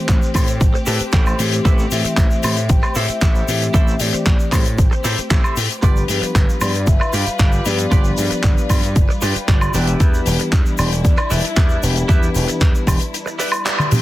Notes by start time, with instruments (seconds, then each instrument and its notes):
Already playing: tine electric piano E3 A3 C4 G4, string section A3 C4 G4, soft synth lead C5
0.08 slap bass A1, muted clean electric guitar stroke, kick, clap, closed hi-hat, shaker
0.22 shaker
0.23 shaker
0.34 slap bass A2, tine electric piano E3 A3 C4 G4, kick, open hi-hat, high woodblock, shaker
0.47 closed hi-hat, shaker
0.49 shaker
0.61 slap bass A1, kick, closed hi-hat, shaker
0.74 muted clean electric guitar stroke, shaker
0.86 slap bass A2, clean electric guitar E4 G4 A4 B4 A5, open hi-hat, shaker
0.99 muted slap bass stroke, closed hi-hat, shaker
1.12 slap bass A1, clean electric guitar E4 G4 A4, kick, clap, closed hi-hat, shaker
1.14 clean electric guitar C5 G5, shaker
1.26 high woodblock, shaker
1.28 shaker
1.39 slap bass A2, tine electric piano E3 A3 C4 G4, open hi-hat, shaker
1.52 closed hi-hat, shaker
1.54 shaker
1.65 slap bass A1, tine electric piano E3 A3 C4 G4, clean electric guitar E4 G4 A4 B4, kick, closed hi-hat, shaker
1.78 shaker
1.91 slap bass A2, soft synth lead E5, open hi-hat, shaker
2.04 muted clean electric guitar stroke, muted slap bass stroke, closed hi-hat, shaker
2.17 slap bass A1, muted clean electric guitar stroke, kick, clap, closed hi-hat, shaker
2.30 shaker
2.43 slap bass A2, tine electric piano E3 A3 C4 G4, open hi-hat, high woodblock, shaker
2.56 closed hi-hat, shaker
2.69 slap bass A1, soft synth lead G5, kick, closed hi-hat, shaker
2.83 muted clean electric guitar stroke, high woodblock, shaker
2.95 slap bass A2, clean electric guitar E4 G4 A4 C5, soft synth lead E5, open hi-hat, shaker
3.08 muted slap bass stroke, closed hi-hat, shaker
3.21 slap bass A1, clean electric guitar E4 G4 A4 C5, kick, clap, closed hi-hat, shaker
3.35 shaker
3.48 slap bass A2, tine electric piano E3 A3 C4 G4, open hi-hat, shaker
3.62 closed hi-hat, shaker
3.74 slap bass A1, tine electric piano E3, clean electric guitar E4 G4 A4 C5, soft synth lead E5, kick, closed hi-hat, shaker
3.87 shaker
4.00 slap bass A2, soft synth lead D5, open hi-hat, shaker
4.13 muted clean electric guitar stroke, muted slap bass stroke, closed hi-hat, shaker
4.26 slap bass A1, muted clean electric guitar stroke, kick, clap, closed hi-hat, shaker
4.40 shaker
4.52 slap bass A2, tine electric piano E3 A3 C4 G4, soft synth lead C5, kick, clap, open hi-hat, high woodblock, shaker
4.65 closed hi-hat, shaker
4.78 slap bass A1, soft synth lead C5, kick, closed hi-hat, shaker
4.91 muted clean electric guitar stroke, shaker
5.04 slap bass A2, clean electric guitar E4 G4 A4 C5, open hi-hat, shaker
5.18 muted slap bass stroke, closed hi-hat, shaker
5.30 slap bass A1, clean electric guitar E4 G4 A4 C5, kick, clap, closed hi-hat, shaker
5.44 high woodblock, shaker
5.56 slap bass A2, open hi-hat, shaker
5.70 closed hi-hat, shaker
5.82 slap bass G1, tine electric piano F3 B3 D4 G4, string section G3 F4 B4, clean electric guitar F4 G4 B4 D5, soft synth lead B4, kick, closed hi-hat, shaker
5.96 shaker
6.08 slap bass G2, open hi-hat, shaker
6.22 muted clean electric guitar stroke, muted slap bass stroke, closed hi-hat, shaker
6.35 slap bass G1, kick, clap, closed hi-hat, shaker
6.49 shaker
6.61 slap bass G2, tine electric piano F3 B3 D4 G4, soft synth lead D5, open hi-hat, high woodblock, shaker
6.74 closed hi-hat, shaker
6.87 slap bass G1, soft synth lead E5, kick, closed hi-hat, shaker
7.00 muted clean electric guitar stroke, high woodblock, shaker
7.13 slap bass G2, clean electric guitar F4 G4 B4 D5, soft synth lead F5, open hi-hat, shaker
7.26 muted slap bass stroke, closed hi-hat, shaker
7.39 slap bass G1, clean electric guitar F4 G4 B4 D5, kick, clap, closed hi-hat, shaker
7.52 shaker
7.65 slap bass G2, tine electric piano F3 B3 D4 G4, soft synth lead D5, open hi-hat, shaker
7.78 closed hi-hat, shaker
7.91 slap bass G1, tine electric piano F3 D4 G4, clean electric guitar F4 G4 B4 D5, kick, closed hi-hat, shaker
8.04 shaker
8.17 slap bass G2, soft synth lead D5, open hi-hat, shaker
8.31 muted clean electric guitar stroke, muted slap bass stroke, closed hi-hat, shaker
8.43 slap bass G1, muted clean electric guitar stroke, kick, clap, closed hi-hat, shaker
8.45 shaker
8.58 shaker
8.69 slap bass G2, tine electric piano F3 B3 D4 G4, kick, open hi-hat, high woodblock, shaker
8.83 closed hi-hat, shaker
8.96 slap bass G1, kick, closed hi-hat, shaker
9.09 muted clean electric guitar stroke, shaker
9.21 slap bass G2, clean electric guitar F4 G4 B4 D5 G5, open hi-hat, shaker
9.35 muted slap bass stroke, closed hi-hat, shaker
9.48 slap bass G1, clean electric guitar F4 G4 B4 D5, kick, clap, closed hi-hat, shaker
9.61 high woodblock, shaker
9.74 slap bass E1, tine electric piano E3 B3 D4 G4, string section D4 E4, clean electric guitar E4 G4 B4 D5, open hi-hat, shaker
9.87 closed hi-hat, shaker
10.00 slap bass E2, tine electric piano E3 B3 D4 G4, soft synth lead B4, kick, closed hi-hat, shaker
10.14 shaker
10.26 slap bass E1, open hi-hat, shaker
10.39 muted clean electric guitar stroke, muted slap bass stroke, closed hi-hat, shaker
10.52 slap bass E2, muted clean electric guitar stroke, kick, clap, closed hi-hat, shaker
10.66 shaker
10.78 slap bass E1, tine electric piano E3 B3 D4 G4, soft synth lead D5, open hi-hat, high woodblock, shaker
10.91 soft synth lead D5, closed hi-hat, shaker
11.05 slap bass E2, kick, closed hi-hat, shaker
11.18 muted clean electric guitar stroke, high woodblock, shaker
11.30 slap bass E1, clean electric guitar E4 G4 B4 D5, soft synth lead E5, open hi-hat, shaker
11.32 shaker
11.43 muted slap bass stroke, closed hi-hat, shaker
11.56 slap bass E2, clean electric guitar E4 G4 B4 D5, kick, clap, closed hi-hat, shaker
11.69 shaker
11.71 shaker
11.83 slap bass E1, tine electric piano E3 B3 D4 G4, soft synth lead B4, open hi-hat, shaker
11.96 closed hi-hat, shaker
12.08 slap bass E2, tine electric piano E3 D4 G4, clean electric guitar E4 G4 B4 E5, kick, closed hi-hat, shaker
12.23 shaker
12.34 slap bass E1, open hi-hat, shaker
12.48 muted clean electric guitar stroke, muted slap bass stroke, closed hi-hat, shaker
12.61 slap bass E2, muted clean electric guitar stroke, kick, clap, closed hi-hat, shaker
12.75 shaker
12.87 slap bass E1, tine electric piano E3 B3 D4 G4, kick, open hi-hat, high woodblock, shaker
13.00 closed hi-hat, shaker
13.14 closed hi-hat, shaker
13.26 muted clean electric guitar stroke, shaker
13.39 clean electric guitar E4 G4 B4 D5, open hi-hat, shaker
13.52 closed hi-hat, high woodblock, shaker
13.65 clean electric guitar E4 G4 B4 D5, clap, closed hi-hat, shaker
13.79 high tom, high woodblock, shaker
13.91 tine electric piano E3 B3 D4 G4, open hi-hat, mid tom, shaker